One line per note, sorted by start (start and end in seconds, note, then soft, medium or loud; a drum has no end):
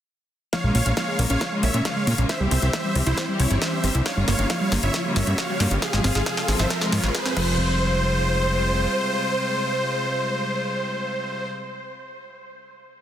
0.53 0.60 F3 medium
0.53 0.68 C#5 medium
0.53 0.68 F5 loud
0.53 kick loud
0.53 snare soft
0.53 closed hi-hat medium
0.53 riser medium
0.64 0.71 A#1 medium
0.64 0.79 C#3 medium
0.64 0.71 G#3 medium
0.64 0.79 G#3 medium
0.64 0.79 A#3 medium
0.64 0.79 F4 medium
0.75 0.82 A#1 medium
0.75 0.82 A#3 loud
0.75 0.90 C#5 medium
0.75 0.90 F5 medium
0.75 open hi-hat medium
0.86 0.93 A#1 medium
0.86 0.94 C#3 medium
0.86 0.94 G#3 medium
0.86 0.94 A#3 medium
0.86 0.93 C#4 medium
0.86 0.94 F4 medium
0.86 closed hi-hat medium
0.97 1.12 C#3 medium
0.97 1.01 F3 medium
0.97 1.12 G#3 medium
0.97 1.12 A#3 medium
0.97 1.12 F4 medium
0.97 1.19 C#5 medium
0.97 1.19 F5 loud
0.97 kick loud
0.97 snare soft
0.97 closed hi-hat medium
1.08 1.18 G#3 loud
1.19 1.26 A#1 medium
1.19 1.27 C#3 medium
1.19 1.27 G#3 medium
1.19 1.26 A#3 loud
1.19 1.27 A#3 medium
1.19 1.27 F4 medium
1.19 open hi-hat medium
1.30 1.37 A#1 medium
1.30 1.45 C#3 medium
1.30 1.45 G#3 medium
1.30 1.45 A#3 medium
1.30 1.37 C#4 loud
1.30 1.45 F4 medium
1.30 1.52 C#5 medium
1.30 1.52 F5 medium
1.30 closed hi-hat medium
1.41 1.48 F3 medium
1.41 kick loud
1.41 snare medium
1.41 closed hi-hat medium
1.52 1.67 C#3 medium
1.52 1.67 G#3 medium
1.52 1.62 G#3 medium
1.52 1.67 A#3 medium
1.52 1.67 F4 medium
1.63 1.70 A#1 loud
1.63 1.70 A#3 loud
1.63 1.78 C#5 medium
1.63 1.78 E5 medium
1.63 open hi-hat loud
1.74 1.81 A#2 medium
1.74 1.82 C#3 medium
1.74 1.82 G#3 medium
1.74 1.82 A#3 medium
1.74 1.84 C#4 medium
1.74 1.82 F4 medium
1.74 closed hi-hat medium
1.85 2.01 C#3 medium
1.85 1.89 F3 medium
1.85 2.01 G#3 medium
1.85 2.01 A#3 medium
1.85 2.01 F4 medium
1.85 2.15 C#5 medium
1.85 2.15 F5 medium
1.85 kick loud
1.85 snare medium
1.85 closed hi-hat medium
1.96 2.06 G#3 loud
2.07 2.14 A#2 medium
2.07 2.15 C#3 medium
2.07 2.15 G#3 medium
2.07 2.14 A#3 loud
2.07 2.15 A#3 medium
2.07 2.15 F4 medium
2.07 open hi-hat medium
2.18 2.25 A#1 medium
2.18 2.26 C#3 medium
2.18 2.26 G#3 medium
2.18 2.26 A#3 medium
2.18 2.25 C#4 loud
2.18 2.26 F4 medium
2.18 closed hi-hat medium
2.29 2.36 E3 medium
2.29 2.44 C5 medium
2.29 2.44 E5 loud
2.29 kick loud
2.29 snare medium
2.29 closed hi-hat medium
2.40 2.47 C2 medium
2.40 2.56 E3 medium
2.40 2.50 G3 medium
2.40 2.56 G3 medium
2.40 2.56 C4 medium
2.40 2.56 G4 medium
2.51 2.58 C2 medium
2.51 2.61 C4 loud
2.51 2.66 C5 medium
2.51 2.66 E5 medium
2.51 open hi-hat loud
2.62 2.69 C2 medium
2.62 2.70 E3 medium
2.62 2.70 G3 medium
2.62 2.70 C4 medium
2.62 2.73 E4 medium
2.62 2.70 G4 medium
2.62 closed hi-hat medium
2.73 2.89 E3 medium
2.73 2.77 E3 medium
2.73 2.89 G3 medium
2.73 2.89 C4 medium
2.73 2.89 G4 medium
2.73 2.96 C5 medium
2.73 2.96 E5 loud
2.73 kick loud
2.73 snare medium
2.73 closed hi-hat medium
2.84 2.95 G3 medium
2.95 3.02 C2 medium
2.95 3.03 E3 medium
2.95 3.03 G3 medium
2.95 3.03 C4 medium
2.95 3.06 C4 medium
2.95 3.03 G4 medium
2.95 open hi-hat medium
3.06 3.13 C2 medium
3.06 3.22 E3 medium
3.06 3.22 G3 medium
3.06 3.22 C4 medium
3.06 3.29 E4 medium
3.06 3.13 E4 loud
3.06 3.22 G4 medium
3.06 3.29 C5 loud
3.06 closed hi-hat medium
3.18 3.24 E3 medium
3.18 kick loud
3.18 snare medium
3.18 closed hi-hat medium
3.28 3.44 E3 medium
3.28 3.44 G3 medium
3.28 3.35 G3 medium
3.28 3.44 C4 medium
3.28 3.44 G4 medium
3.40 3.46 C2 loud
3.40 3.50 C4 loud
3.40 3.54 E4 medium
3.40 3.54 C#5 medium
3.40 open hi-hat loud
3.51 3.57 G1 medium
3.51 3.58 E3 medium
3.51 3.58 G3 medium
3.51 3.58 C4 medium
3.51 3.57 E4 loud
3.51 3.58 G4 medium
3.51 closed hi-hat medium
3.62 3.77 E3 medium
3.62 3.66 E3 medium
3.62 3.77 G3 medium
3.62 3.77 C4 medium
3.62 3.77 G4 medium
3.62 3.91 C5 medium
3.62 3.91 E5 medium
3.62 kick loud
3.62 snare medium
3.62 closed hi-hat medium
3.73 3.79 G3 medium
3.84 3.90 G1 medium
3.84 3.91 E3 medium
3.84 3.91 G3 medium
3.84 3.91 C4 medium
3.84 3.88 C4 medium
3.84 3.91 G4 medium
3.84 open hi-hat medium
3.95 4.01 C2 medium
3.95 4.02 E3 medium
3.95 4.03 G3 medium
3.95 4.02 C4 medium
3.95 4.01 E4 loud
3.95 4.02 G4 medium
3.95 closed hi-hat medium
4.06 4.13 F3 medium
4.06 4.21 C#5 medium
4.06 4.21 F5 loud
4.06 kick loud
4.06 snare medium
4.06 closed hi-hat medium
4.17 4.24 G1 medium
4.17 4.32 C#3 medium
4.17 4.32 G3 medium
4.17 4.24 G3 medium
4.17 4.32 A#3 medium
4.17 4.32 F4 medium
4.28 4.35 G1 medium
4.28 4.35 A#3 loud
4.28 4.43 C#5 medium
4.28 4.43 F5 medium
4.28 snare medium
4.28 open hi-hat loud
4.39 4.46 G1 medium
4.39 4.47 C#3 medium
4.39 4.47 G3 medium
4.39 4.47 A#3 medium
4.39 4.46 C#4 medium
4.39 4.47 F4 medium
4.39 closed hi-hat medium
4.50 4.65 C#3 medium
4.50 4.54 F3 medium
4.50 4.65 G3 medium
4.50 4.65 A#3 medium
4.50 4.65 F4 medium
4.50 4.72 C#5 medium
4.50 4.72 F5 loud
4.50 kick loud
4.50 snare medium
4.50 closed hi-hat medium
4.61 4.71 G3 loud
4.72 4.79 G1 medium
4.72 4.80 C#3 medium
4.72 4.80 G3 medium
4.72 4.79 A#3 loud
4.72 4.80 A#3 medium
4.72 4.80 F4 medium
4.72 snare medium
4.72 open hi-hat loud
4.83 4.90 G1 medium
4.83 4.99 C#3 medium
4.83 4.99 G3 medium
4.83 4.99 A#3 medium
4.83 4.90 C#4 loud
4.83 4.99 F4 medium
4.83 5.05 C#5 medium
4.83 5.05 E5 loud
4.83 closed hi-hat medium
4.94 5.01 F3 medium
4.94 kick loud
4.94 snare medium
4.94 closed hi-hat medium
5.05 5.21 C#3 medium
5.05 5.15 G3 medium
5.05 5.21 G3 medium
5.05 5.21 A#3 medium
5.05 5.21 F4 medium
5.16 5.23 G1 loud
5.16 5.23 A#3 loud
5.16 5.31 C#5 medium
5.16 5.31 E5 medium
5.16 snare medium
5.16 open hi-hat loud
5.27 5.34 G2 medium
5.27 5.35 C#3 medium
5.27 5.35 G3 medium
5.27 5.35 A#3 medium
5.27 5.37 C#4 medium
5.27 5.35 F4 medium
5.27 closed hi-hat medium
5.38 5.54 C#3 medium
5.38 5.42 F3 medium
5.38 5.54 G3 medium
5.38 5.54 A#3 medium
5.38 5.54 F4 medium
5.38 5.68 C#5 medium
5.38 5.68 F5 loud
5.38 kick loud
5.38 snare medium
5.38 closed hi-hat medium
5.49 5.59 G3 loud
5.60 5.67 G2 loud
5.60 5.68 C#3 medium
5.60 5.68 G3 medium
5.60 5.67 A#3 loud
5.60 5.68 A#3 medium
5.60 5.68 F4 medium
5.60 snare medium
5.60 open hi-hat medium
5.71 5.78 G1 medium
5.71 5.79 C#3 medium
5.71 5.79 G3 medium
5.71 5.79 A#3 medium
5.71 5.78 C#4 loud
5.71 5.79 F4 medium
5.71 closed hi-hat medium
5.82 5.89 F3 medium
5.82 5.97 G#4 medium
5.82 5.97 F5 loud
5.82 kick loud
5.82 snare medium
5.82 closed hi-hat medium
5.93 6.00 G#1 medium
5.93 6.09 C3 medium
5.93 6.09 F3 medium
5.93 6.03 G#3 medium
5.93 6.09 G#3 medium
5.93 6.09 F4 medium
5.93 snare medium
6.04 6.11 G#1 medium
6.04 6.14 C4 loud
6.04 6.19 G#4 medium
6.04 6.19 F5 medium
6.04 snare medium
6.04 open hi-hat loud
6.15 6.22 G#1 medium
6.15 6.23 C3 medium
6.15 6.23 F3 medium
6.15 6.23 G#3 medium
6.15 6.25 F4 medium
6.15 6.23 F4 medium
6.15 snare medium
6.15 closed hi-hat medium
6.26 6.42 C3 medium
6.26 6.30 F3 medium
6.26 6.42 F3 medium
6.26 6.42 G#3 medium
6.26 6.42 F4 medium
6.26 6.49 G#4 medium
6.26 6.49 F5 loud
6.26 kick loud
6.26 snare loud
6.26 closed hi-hat medium
6.37 6.48 G#3 medium
6.37 snare medium
6.48 6.55 G#1 medium
6.48 6.56 C3 medium
6.48 6.56 F3 medium
6.48 6.56 G#3 medium
6.48 6.59 C4 medium
6.48 6.56 F4 medium
6.48 snare loud
6.48 open hi-hat loud
6.59 6.66 G#1 medium
6.59 6.75 C3 medium
6.59 6.75 F3 medium
6.59 6.75 G#3 medium
6.59 6.75 F4 medium
6.59 6.66 F4 loud
6.59 6.82 C5 medium
6.59 6.82 E5 loud
6.59 snare medium
6.59 closed hi-hat medium
6.70 6.77 F3 medium
6.70 kick loud
6.70 snare loud
6.70 closed hi-hat medium
6.81 6.97 C3 medium
6.81 6.97 F3 medium
6.81 6.88 G#3 medium
6.81 6.97 G#3 medium
6.81 6.97 F4 medium
6.81 snare medium
6.92 6.99 G#2 medium
6.92 7.03 F3 medium
6.92 7.07 F4 medium
6.92 7.07 C#5 medium
6.92 snare loud
6.92 open hi-hat loud
7.04 7.10 G#1 medium
7.04 7.11 C3 medium
7.04 7.11 F3 medium
7.04 7.11 G#3 medium
7.04 7.14 C4 medium
7.04 7.11 F4 medium
7.04 snare loud
7.04 closed hi-hat medium
7.15 7.30 C3 medium
7.15 7.30 F3 medium
7.15 7.30 G#3 medium
7.15 7.25 F4 medium
7.15 7.30 F4 medium
7.15 7.37 G#4 medium
7.15 7.35 C5 loud
7.15 kick loud
7.15 snare loud
7.15 closed hi-hat medium
7.26 7.30 C4 medium
7.26 snare medium
7.37 8.87 F1 loud
7.37 11.48 C3 medium
7.37 7.78 F3 medium
7.37 11.48 G3 medium
7.37 11.48 G#3 medium
7.37 11.48 F4 medium
7.37 11.48 C5 loud
7.37 kick loud
7.37 crash medium